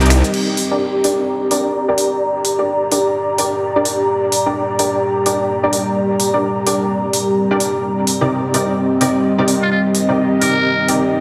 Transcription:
Already playing: detuned saw bass C2, ambient pad G3 C4 D#4 A#4, analog synth pad C4 G4 D#5
0.01 synth stab D#4 G4 A#4 D5, closed hi-hat, shaker
0.06 closed hi-hat
0.10 finger snap, open hi-hat, ride, shaker
0.24 closed hi-hat, shaker
0.34 ambient pad G3 A#3 D4 A#4, crash
0.57 open hi-hat
0.71 synth stab D4 G4 A#4 D5
0.79 analog synth pad A#5
0.85 analog synth pad D5
1.04 synth stab D4 G4 A#4 D5, open hi-hat
1.51 synth stab D4 G4 A#4 D5, open hi-hat
1.88 synth stab D4 G4 A#4 D5
1.98 open hi-hat
2.45 open hi-hat
2.59 synth stab D4 G4 A#4 D5
2.92 synth stab D4 G4 A#4 D5, open hi-hat
3.38 synth stab D4 G4 A#4 D5, open hi-hat
3.76 synth stab D4 G4 A#4 D5
3.85 open hi-hat
4.09 ambient pad C4
4.32 open hi-hat
4.46 synth stab D4 G4 A#4 D5
4.79 synth stab D4 G4 A#4 D5, open hi-hat
5.26 synth stab D4 G4 A#4 D5, open hi-hat
5.63 synth stab D4 G4 A#4 D5
5.73 open hi-hat
6.20 open hi-hat
6.34 synth stab D4 G4 A#4 D5
6.67 synth stab D4 G4 A#4 D5, open hi-hat
7.13 open hi-hat
7.51 synth stab D4 G4 A#4 D5
7.60 open hi-hat
7.84 analog synth pad C4, ambient pad D#4
7.99 analog synth pad G4
8.07 open hi-hat
8.21 synth stab C3 D#4 G4 A#4 D5
8.54 synth stab C3 D#4 G4 A#4 D5, open hi-hat
8.64 analog synth pad D#5
9.01 synth stab C3 D#4 G4 A#4 D5, open hi-hat
9.38 synth stab C3 D#4 G4 A#4 D5
9.48 open hi-hat
9.62 muted trumpet F4
9.71 muted trumpet F4
9.95 open hi-hat
10.09 synth stab C3 D#4 G4 A#4 D5
10.41 synth stab C3 D#4 G4 A#4 D5, muted trumpet A#4, open hi-hat
10.88 synth stab C3 D#4 G4 A#4 D5, open hi-hat

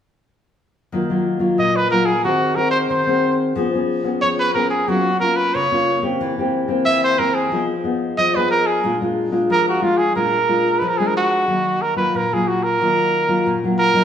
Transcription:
0.92 nylon-string guitar D#3 F#3 A#3 F4
1.09 nylon-string guitar F#3 A#3 F4
1.39 nylon-string guitar F#3 A#3 F4
1.58 nylon-string guitar A#2, trumpet D#5
1.76 trumpet B4
1.90 nylon-string guitar F#3 A#3 F4, trumpet A#4
2.06 trumpet G#4
2.24 nylon-string guitar D#3 C4 F#4 G#4, trumpet F#4
2.56 nylon-string guitar C4 F#4 G#4, trumpet A#4
2.71 trumpet C5
2.90 nylon-string guitar D#3, trumpet C5
3.07 nylon-string guitar C4 F#4 G#4
3.56 nylon-string guitar F3 B3 C#4 G#4
3.74 nylon-string guitar B3 C#4 G#4
4.04 nylon-string guitar B3 C#4 G#4
4.21 nylon-string guitar F3, trumpet C#5
4.39 trumpet B4
4.55 nylon-string guitar B3 C#4 G#4, trumpet A#4
4.70 trumpet G#4
4.88 nylon-string guitar F#3 A#3 C#4 F4, trumpet F#4
5.20 nylon-string guitar A#3 C#4 F4, trumpet A#4
5.36 trumpet B4
5.55 nylon-string guitar C#3, trumpet C#5
5.71 nylon-string guitar A#3 C#4 F4
6.02 nylon-string guitar A#3 C4 G4
6.21 nylon-string guitar E3
6.38 nylon-string guitar A#3 C4 G4
6.68 nylon-string guitar A#3 C4 G4
6.85 nylon-string guitar E3, trumpet E5
7.04 trumpet C5
7.18 nylon-string guitar A#3 C4 G4, trumpet A#4
7.34 trumpet G#4
7.52 nylon-string guitar F3 B3 D#4 G#4
7.84 nylon-string guitar B3 D#4 G#4
8.18 nylon-string guitar F3, trumpet D#5
8.35 nylon-string guitar B3 D#4 G#4, trumpet B4
8.51 trumpet A#4
8.66 trumpet G#4
8.84 nylon-string guitar A#2 G#3 D4 F4
9.01 nylon-string guitar G#3 D4 F4
9.32 nylon-string guitar G#3 D4 F4
9.50 nylon-string guitar F3, trumpet A#4
9.69 trumpet F#4
9.82 nylon-string guitar G#3 D4 F4, trumpet F4
9.98 trumpet G#4
10.15 nylon-string guitar A#2 G#3 D4 F4, trumpet A#4
10.48 nylon-string guitar G#3 D4 F4
10.79 nylon-string guitar F3, trumpet B4
10.89 trumpet A#4
10.98 nylon-string guitar G#3 D4, trumpet G#4
11.07 trumpet A#4
11.17 trumpet F#4
11.48 nylon-string guitar D#3 F#3 A#3
11.82 trumpet A#4
11.96 nylon-string guitar F#3 A#3 F4, trumpet B4
12.14 nylon-string guitar A#2, trumpet A#4
12.32 nylon-string guitar F#3 A#3 F4, trumpet G#4
12.48 trumpet F#4
12.63 trumpet A#4
12.81 nylon-string guitar D#3 F#3 A#3 F4
13.28 nylon-string guitar F#3 A#3 F4
13.46 nylon-string guitar A#2
13.64 nylon-string guitar F#3 A#3 F4
13.79 trumpet A#4
13.94 nylon-string guitar F#3 A#3 D#4

